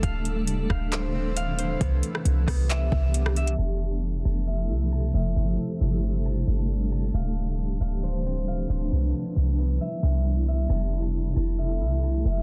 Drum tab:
HH |x-x-x---x---x-x-|x-x-x-o-x---x-xx|----------------|----------------|
CP |--------x-------|--------x-------|----------------|----------------|
SD |------r---------|---r--r------r--|----------------|----------------|
BD |o-----o---------|o-----o---o-----|----------------|----------------|

HH |----------------|----------------|----------------|
CP |----------------|----------------|----------------|
SD |----------------|----------------|----------------|
BD |----------------|----------------|----------------|